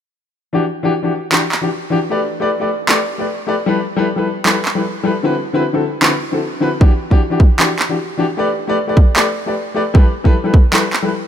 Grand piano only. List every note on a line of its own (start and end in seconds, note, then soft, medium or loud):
0.53 0.62 E3 medium
0.53 0.62 D4 medium
0.53 0.62 F#4 medium
0.53 0.63 G4 medium
0.83 0.90 E3 medium
0.83 0.91 D4 medium
0.83 0.91 F#4 medium
0.83 0.91 G4 loud
1.03 1.10 E3 medium
1.03 1.10 D4 medium
1.03 1.11 F#4 medium
1.03 1.11 G4 medium
1.31 1.40 E3 medium
1.31 1.40 D4 medium
1.31 1.41 F#4 medium
1.31 1.41 G4 medium
1.61 1.66 E3 medium
1.61 1.67 D4 medium
1.61 1.67 F#4 medium
1.61 1.67 G4 medium
1.90 1.96 E3 medium
1.90 1.96 D4 medium
1.90 1.96 F#4 medium
1.90 1.97 G4 loud
2.10 2.18 A3 medium
2.10 2.19 G4 medium
2.10 2.19 B4 medium
2.10 2.19 D5 medium
2.40 2.47 A3 medium
2.40 2.48 G4 medium
2.40 2.48 B4 medium
2.40 2.48 D5 loud
2.60 2.67 A3 medium
2.60 2.67 G4 medium
2.60 2.68 B4 medium
2.60 2.68 D5 medium
2.88 2.97 A3 medium
2.88 2.97 G4 medium
2.88 2.98 B4 medium
2.88 2.98 D5 medium
3.18 3.23 A3 medium
3.18 3.23 G4 medium
3.18 3.24 B4 medium
3.18 3.24 D5 medium
3.47 3.52 A3 medium
3.47 3.53 G4 medium
3.47 3.53 B4 medium
3.47 3.53 D5 medium
3.66 3.75 G3 medium
3.66 3.76 E4 medium
3.66 3.76 A4 medium
3.66 3.76 B4 loud
3.96 4.04 G3 medium
3.96 4.04 E4 medium
3.96 4.05 A4 medium
3.96 4.05 B4 loud
4.16 4.24 G3 medium
4.16 4.24 E4 medium
4.16 4.24 A4 medium
4.16 4.25 B4 medium
4.45 4.54 G3 medium
4.45 4.54 E4 medium
4.45 4.54 A4 medium
4.45 4.55 B4 loud
4.75 4.80 G3 medium
4.75 4.80 E4 medium
4.75 4.81 A4 medium
4.75 4.81 B4 medium
5.03 5.09 G3 medium
5.03 5.10 E4 medium
5.03 5.10 A4 medium
5.03 5.10 B4 loud
5.23 5.32 D3 medium
5.23 5.32 C4 medium
5.23 5.33 E4 medium
5.23 5.33 F#4 medium
5.23 5.33 B4 loud
5.53 5.61 D3 medium
5.53 5.61 C4 medium
5.53 5.61 E4 medium
5.53 5.62 F#4 medium
5.53 5.62 B4 loud
5.73 5.81 D3 medium
5.73 5.81 C4 medium
5.73 5.81 E4 medium
5.73 5.81 F#4 medium
5.73 5.81 A4 medium
6.01 6.10 D3 medium
6.01 6.11 C4 medium
6.01 6.11 E4 medium
6.01 6.11 F#4 medium
6.01 6.11 B4 medium
6.32 6.37 D3 medium
6.32 6.37 C4 medium
6.32 6.37 E4 medium
6.32 6.38 F#4 medium
6.32 6.38 A4 medium
6.60 6.66 D3 medium
6.60 6.66 C4 medium
6.60 6.67 E4 medium
6.60 6.67 F#4 medium
6.60 6.67 B4 loud
6.80 6.89 E3 medium
6.80 6.89 D4 medium
6.80 6.90 F#4 medium
6.80 6.90 G4 loud
7.10 7.18 E3 medium
7.10 7.18 D4 medium
7.10 7.18 F#4 medium
7.10 7.19 G4 loud
7.30 7.37 E3 medium
7.30 7.38 D4 medium
7.30 7.38 F#4 medium
7.30 7.38 G4 medium
7.58 7.67 E3 medium
7.58 7.68 D4 medium
7.58 7.68 F#4 medium
7.58 7.68 G4 medium
7.89 7.94 E3 medium
7.89 7.94 D4 medium
7.89 7.94 F#4 medium
7.89 7.95 G4 medium
8.17 8.23 E3 medium
8.17 8.23 D4 medium
8.17 8.24 F#4 medium
8.17 8.24 G4 loud
8.37 8.46 A3 medium
8.37 8.46 G4 medium
8.37 8.47 B4 medium
8.37 8.47 D5 loud
8.67 8.75 A3 medium
8.67 8.75 G4 medium
8.67 8.76 B4 medium
8.67 8.76 D5 loud
8.87 8.95 A3 medium
8.87 8.95 G4 medium
8.87 8.95 B4 medium
8.87 8.96 D5 medium
9.16 9.24 A3 medium
9.16 9.25 G4 medium
9.16 9.25 B4 medium
9.16 9.25 D5 medium
9.46 9.51 A3 medium
9.46 9.51 G4 medium
9.46 9.51 B4 medium
9.46 9.52 D5 medium
9.74 9.80 A3 medium
9.74 9.80 G4 medium
9.74 9.81 B4 medium
9.74 9.81 D5 medium
9.94 10.03 G3 medium
9.94 10.03 E4 medium
9.94 10.03 A4 medium
9.94 10.04 B4 loud
10.24 10.32 G3 medium
10.24 10.32 E4 medium
10.24 10.32 A4 medium
10.24 10.33 B4 loud
10.44 10.51 G3 medium
10.44 10.52 E4 medium
10.44 10.52 A4 medium
10.44 10.52 B4 medium
10.72 10.81 G3 medium
10.72 10.81 E4 medium
10.72 10.82 A4 medium
10.72 10.82 B4 medium
11.02 11.07 G3 medium
11.02 11.08 E4 medium
11.02 11.08 A4 medium
11.02 11.08 B4 medium